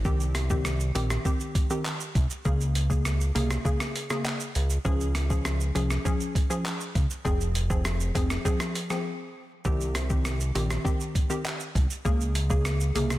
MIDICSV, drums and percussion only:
0, 0, Header, 1, 2, 480
1, 0, Start_track
1, 0, Tempo, 600000
1, 43, Time_signature, 4, 2, 24, 8
1, 10547, End_track
2, 0, Start_track
2, 0, Title_t, "Drums"
2, 40, Note_on_c, 9, 82, 72
2, 41, Note_on_c, 9, 36, 115
2, 120, Note_off_c, 9, 82, 0
2, 121, Note_off_c, 9, 36, 0
2, 162, Note_on_c, 9, 82, 55
2, 242, Note_off_c, 9, 82, 0
2, 278, Note_on_c, 9, 37, 86
2, 280, Note_on_c, 9, 42, 87
2, 280, Note_on_c, 9, 82, 62
2, 358, Note_off_c, 9, 37, 0
2, 360, Note_off_c, 9, 42, 0
2, 360, Note_off_c, 9, 82, 0
2, 400, Note_on_c, 9, 82, 85
2, 401, Note_on_c, 9, 36, 103
2, 480, Note_off_c, 9, 82, 0
2, 481, Note_off_c, 9, 36, 0
2, 519, Note_on_c, 9, 37, 100
2, 519, Note_on_c, 9, 82, 83
2, 599, Note_off_c, 9, 37, 0
2, 599, Note_off_c, 9, 82, 0
2, 641, Note_on_c, 9, 82, 60
2, 721, Note_off_c, 9, 82, 0
2, 764, Note_on_c, 9, 42, 93
2, 764, Note_on_c, 9, 82, 64
2, 844, Note_off_c, 9, 42, 0
2, 844, Note_off_c, 9, 82, 0
2, 883, Note_on_c, 9, 37, 94
2, 883, Note_on_c, 9, 82, 82
2, 963, Note_off_c, 9, 37, 0
2, 963, Note_off_c, 9, 82, 0
2, 1002, Note_on_c, 9, 36, 91
2, 1003, Note_on_c, 9, 82, 79
2, 1082, Note_off_c, 9, 36, 0
2, 1083, Note_off_c, 9, 82, 0
2, 1121, Note_on_c, 9, 82, 56
2, 1201, Note_off_c, 9, 82, 0
2, 1241, Note_on_c, 9, 36, 89
2, 1242, Note_on_c, 9, 42, 83
2, 1242, Note_on_c, 9, 82, 61
2, 1321, Note_off_c, 9, 36, 0
2, 1322, Note_off_c, 9, 42, 0
2, 1322, Note_off_c, 9, 82, 0
2, 1360, Note_on_c, 9, 82, 70
2, 1440, Note_off_c, 9, 82, 0
2, 1480, Note_on_c, 9, 82, 81
2, 1483, Note_on_c, 9, 39, 100
2, 1560, Note_off_c, 9, 82, 0
2, 1563, Note_off_c, 9, 39, 0
2, 1601, Note_on_c, 9, 82, 59
2, 1681, Note_off_c, 9, 82, 0
2, 1722, Note_on_c, 9, 36, 97
2, 1724, Note_on_c, 9, 42, 63
2, 1724, Note_on_c, 9, 82, 48
2, 1802, Note_off_c, 9, 36, 0
2, 1804, Note_off_c, 9, 42, 0
2, 1804, Note_off_c, 9, 82, 0
2, 1842, Note_on_c, 9, 82, 91
2, 1922, Note_off_c, 9, 82, 0
2, 1962, Note_on_c, 9, 82, 70
2, 1963, Note_on_c, 9, 36, 116
2, 2042, Note_off_c, 9, 82, 0
2, 2043, Note_off_c, 9, 36, 0
2, 2084, Note_on_c, 9, 82, 58
2, 2164, Note_off_c, 9, 82, 0
2, 2203, Note_on_c, 9, 42, 90
2, 2203, Note_on_c, 9, 82, 64
2, 2283, Note_off_c, 9, 42, 0
2, 2283, Note_off_c, 9, 82, 0
2, 2323, Note_on_c, 9, 36, 100
2, 2323, Note_on_c, 9, 82, 88
2, 2403, Note_off_c, 9, 36, 0
2, 2403, Note_off_c, 9, 82, 0
2, 2442, Note_on_c, 9, 37, 101
2, 2442, Note_on_c, 9, 82, 84
2, 2522, Note_off_c, 9, 37, 0
2, 2522, Note_off_c, 9, 82, 0
2, 2564, Note_on_c, 9, 82, 61
2, 2644, Note_off_c, 9, 82, 0
2, 2685, Note_on_c, 9, 42, 95
2, 2685, Note_on_c, 9, 82, 63
2, 2765, Note_off_c, 9, 42, 0
2, 2765, Note_off_c, 9, 82, 0
2, 2804, Note_on_c, 9, 82, 83
2, 2805, Note_on_c, 9, 37, 93
2, 2884, Note_off_c, 9, 82, 0
2, 2885, Note_off_c, 9, 37, 0
2, 2923, Note_on_c, 9, 36, 92
2, 2924, Note_on_c, 9, 82, 78
2, 3003, Note_off_c, 9, 36, 0
2, 3004, Note_off_c, 9, 82, 0
2, 3042, Note_on_c, 9, 37, 100
2, 3042, Note_on_c, 9, 82, 59
2, 3122, Note_off_c, 9, 37, 0
2, 3122, Note_off_c, 9, 82, 0
2, 3165, Note_on_c, 9, 42, 79
2, 3165, Note_on_c, 9, 82, 56
2, 3245, Note_off_c, 9, 42, 0
2, 3245, Note_off_c, 9, 82, 0
2, 3281, Note_on_c, 9, 82, 71
2, 3283, Note_on_c, 9, 37, 95
2, 3361, Note_off_c, 9, 82, 0
2, 3363, Note_off_c, 9, 37, 0
2, 3400, Note_on_c, 9, 82, 84
2, 3404, Note_on_c, 9, 39, 98
2, 3480, Note_off_c, 9, 82, 0
2, 3484, Note_off_c, 9, 39, 0
2, 3520, Note_on_c, 9, 82, 58
2, 3600, Note_off_c, 9, 82, 0
2, 3642, Note_on_c, 9, 42, 66
2, 3642, Note_on_c, 9, 82, 48
2, 3722, Note_off_c, 9, 42, 0
2, 3722, Note_off_c, 9, 82, 0
2, 3760, Note_on_c, 9, 82, 89
2, 3840, Note_off_c, 9, 82, 0
2, 3882, Note_on_c, 9, 82, 72
2, 3883, Note_on_c, 9, 36, 123
2, 3962, Note_off_c, 9, 82, 0
2, 3963, Note_off_c, 9, 36, 0
2, 4002, Note_on_c, 9, 82, 55
2, 4082, Note_off_c, 9, 82, 0
2, 4119, Note_on_c, 9, 37, 94
2, 4120, Note_on_c, 9, 42, 90
2, 4120, Note_on_c, 9, 82, 65
2, 4199, Note_off_c, 9, 37, 0
2, 4200, Note_off_c, 9, 42, 0
2, 4200, Note_off_c, 9, 82, 0
2, 4242, Note_on_c, 9, 82, 85
2, 4243, Note_on_c, 9, 36, 102
2, 4322, Note_off_c, 9, 82, 0
2, 4323, Note_off_c, 9, 36, 0
2, 4361, Note_on_c, 9, 37, 105
2, 4361, Note_on_c, 9, 82, 85
2, 4441, Note_off_c, 9, 37, 0
2, 4441, Note_off_c, 9, 82, 0
2, 4484, Note_on_c, 9, 82, 59
2, 4564, Note_off_c, 9, 82, 0
2, 4605, Note_on_c, 9, 42, 92
2, 4605, Note_on_c, 9, 82, 66
2, 4685, Note_off_c, 9, 42, 0
2, 4685, Note_off_c, 9, 82, 0
2, 4724, Note_on_c, 9, 37, 94
2, 4724, Note_on_c, 9, 82, 83
2, 4804, Note_off_c, 9, 37, 0
2, 4804, Note_off_c, 9, 82, 0
2, 4843, Note_on_c, 9, 36, 92
2, 4844, Note_on_c, 9, 82, 80
2, 4923, Note_off_c, 9, 36, 0
2, 4924, Note_off_c, 9, 82, 0
2, 4963, Note_on_c, 9, 82, 58
2, 5043, Note_off_c, 9, 82, 0
2, 5082, Note_on_c, 9, 36, 92
2, 5086, Note_on_c, 9, 42, 81
2, 5086, Note_on_c, 9, 82, 60
2, 5162, Note_off_c, 9, 36, 0
2, 5166, Note_off_c, 9, 42, 0
2, 5166, Note_off_c, 9, 82, 0
2, 5203, Note_on_c, 9, 82, 71
2, 5283, Note_off_c, 9, 82, 0
2, 5322, Note_on_c, 9, 82, 84
2, 5326, Note_on_c, 9, 39, 102
2, 5402, Note_off_c, 9, 82, 0
2, 5406, Note_off_c, 9, 39, 0
2, 5443, Note_on_c, 9, 82, 60
2, 5523, Note_off_c, 9, 82, 0
2, 5562, Note_on_c, 9, 36, 96
2, 5564, Note_on_c, 9, 42, 64
2, 5564, Note_on_c, 9, 82, 47
2, 5642, Note_off_c, 9, 36, 0
2, 5644, Note_off_c, 9, 42, 0
2, 5644, Note_off_c, 9, 82, 0
2, 5682, Note_on_c, 9, 82, 85
2, 5762, Note_off_c, 9, 82, 0
2, 5803, Note_on_c, 9, 36, 119
2, 5803, Note_on_c, 9, 82, 73
2, 5883, Note_off_c, 9, 36, 0
2, 5883, Note_off_c, 9, 82, 0
2, 5924, Note_on_c, 9, 82, 55
2, 6004, Note_off_c, 9, 82, 0
2, 6042, Note_on_c, 9, 42, 89
2, 6042, Note_on_c, 9, 82, 65
2, 6122, Note_off_c, 9, 42, 0
2, 6122, Note_off_c, 9, 82, 0
2, 6162, Note_on_c, 9, 82, 85
2, 6163, Note_on_c, 9, 36, 98
2, 6242, Note_off_c, 9, 82, 0
2, 6243, Note_off_c, 9, 36, 0
2, 6280, Note_on_c, 9, 37, 108
2, 6280, Note_on_c, 9, 82, 88
2, 6360, Note_off_c, 9, 37, 0
2, 6360, Note_off_c, 9, 82, 0
2, 6402, Note_on_c, 9, 82, 61
2, 6482, Note_off_c, 9, 82, 0
2, 6522, Note_on_c, 9, 36, 94
2, 6523, Note_on_c, 9, 42, 96
2, 6523, Note_on_c, 9, 82, 65
2, 6602, Note_off_c, 9, 36, 0
2, 6603, Note_off_c, 9, 42, 0
2, 6603, Note_off_c, 9, 82, 0
2, 6642, Note_on_c, 9, 37, 97
2, 6642, Note_on_c, 9, 82, 82
2, 6722, Note_off_c, 9, 37, 0
2, 6722, Note_off_c, 9, 82, 0
2, 6762, Note_on_c, 9, 36, 94
2, 6763, Note_on_c, 9, 82, 79
2, 6842, Note_off_c, 9, 36, 0
2, 6843, Note_off_c, 9, 82, 0
2, 6880, Note_on_c, 9, 82, 58
2, 6881, Note_on_c, 9, 37, 104
2, 6960, Note_off_c, 9, 82, 0
2, 6961, Note_off_c, 9, 37, 0
2, 7004, Note_on_c, 9, 42, 83
2, 7004, Note_on_c, 9, 82, 60
2, 7084, Note_off_c, 9, 42, 0
2, 7084, Note_off_c, 9, 82, 0
2, 7120, Note_on_c, 9, 82, 70
2, 7123, Note_on_c, 9, 37, 99
2, 7200, Note_off_c, 9, 82, 0
2, 7203, Note_off_c, 9, 37, 0
2, 7722, Note_on_c, 9, 82, 73
2, 7723, Note_on_c, 9, 36, 121
2, 7802, Note_off_c, 9, 82, 0
2, 7803, Note_off_c, 9, 36, 0
2, 7843, Note_on_c, 9, 82, 55
2, 7923, Note_off_c, 9, 82, 0
2, 7960, Note_on_c, 9, 37, 91
2, 7961, Note_on_c, 9, 42, 90
2, 7961, Note_on_c, 9, 82, 66
2, 8040, Note_off_c, 9, 37, 0
2, 8041, Note_off_c, 9, 42, 0
2, 8041, Note_off_c, 9, 82, 0
2, 8081, Note_on_c, 9, 82, 84
2, 8082, Note_on_c, 9, 36, 99
2, 8161, Note_off_c, 9, 82, 0
2, 8162, Note_off_c, 9, 36, 0
2, 8200, Note_on_c, 9, 37, 103
2, 8200, Note_on_c, 9, 82, 88
2, 8280, Note_off_c, 9, 37, 0
2, 8280, Note_off_c, 9, 82, 0
2, 8322, Note_on_c, 9, 82, 64
2, 8402, Note_off_c, 9, 82, 0
2, 8444, Note_on_c, 9, 42, 95
2, 8444, Note_on_c, 9, 82, 67
2, 8524, Note_off_c, 9, 42, 0
2, 8524, Note_off_c, 9, 82, 0
2, 8564, Note_on_c, 9, 37, 101
2, 8564, Note_on_c, 9, 82, 81
2, 8644, Note_off_c, 9, 37, 0
2, 8644, Note_off_c, 9, 82, 0
2, 8683, Note_on_c, 9, 36, 93
2, 8686, Note_on_c, 9, 82, 78
2, 8763, Note_off_c, 9, 36, 0
2, 8766, Note_off_c, 9, 82, 0
2, 8803, Note_on_c, 9, 82, 60
2, 8883, Note_off_c, 9, 82, 0
2, 8922, Note_on_c, 9, 36, 89
2, 8924, Note_on_c, 9, 42, 85
2, 8924, Note_on_c, 9, 82, 59
2, 9002, Note_off_c, 9, 36, 0
2, 9004, Note_off_c, 9, 42, 0
2, 9004, Note_off_c, 9, 82, 0
2, 9040, Note_on_c, 9, 82, 72
2, 9120, Note_off_c, 9, 82, 0
2, 9161, Note_on_c, 9, 82, 82
2, 9164, Note_on_c, 9, 39, 100
2, 9241, Note_off_c, 9, 82, 0
2, 9244, Note_off_c, 9, 39, 0
2, 9280, Note_on_c, 9, 82, 59
2, 9360, Note_off_c, 9, 82, 0
2, 9403, Note_on_c, 9, 36, 98
2, 9405, Note_on_c, 9, 42, 66
2, 9405, Note_on_c, 9, 82, 49
2, 9483, Note_off_c, 9, 36, 0
2, 9485, Note_off_c, 9, 42, 0
2, 9485, Note_off_c, 9, 82, 0
2, 9523, Note_on_c, 9, 82, 87
2, 9603, Note_off_c, 9, 82, 0
2, 9643, Note_on_c, 9, 36, 124
2, 9643, Note_on_c, 9, 82, 73
2, 9723, Note_off_c, 9, 36, 0
2, 9723, Note_off_c, 9, 82, 0
2, 9764, Note_on_c, 9, 82, 55
2, 9844, Note_off_c, 9, 82, 0
2, 9882, Note_on_c, 9, 42, 93
2, 9882, Note_on_c, 9, 82, 67
2, 9962, Note_off_c, 9, 42, 0
2, 9962, Note_off_c, 9, 82, 0
2, 10002, Note_on_c, 9, 82, 88
2, 10003, Note_on_c, 9, 36, 98
2, 10082, Note_off_c, 9, 82, 0
2, 10083, Note_off_c, 9, 36, 0
2, 10121, Note_on_c, 9, 37, 105
2, 10121, Note_on_c, 9, 82, 89
2, 10201, Note_off_c, 9, 37, 0
2, 10201, Note_off_c, 9, 82, 0
2, 10243, Note_on_c, 9, 82, 64
2, 10323, Note_off_c, 9, 82, 0
2, 10365, Note_on_c, 9, 42, 94
2, 10365, Note_on_c, 9, 82, 67
2, 10445, Note_off_c, 9, 42, 0
2, 10445, Note_off_c, 9, 82, 0
2, 10484, Note_on_c, 9, 37, 100
2, 10484, Note_on_c, 9, 82, 84
2, 10547, Note_off_c, 9, 37, 0
2, 10547, Note_off_c, 9, 82, 0
2, 10547, End_track
0, 0, End_of_file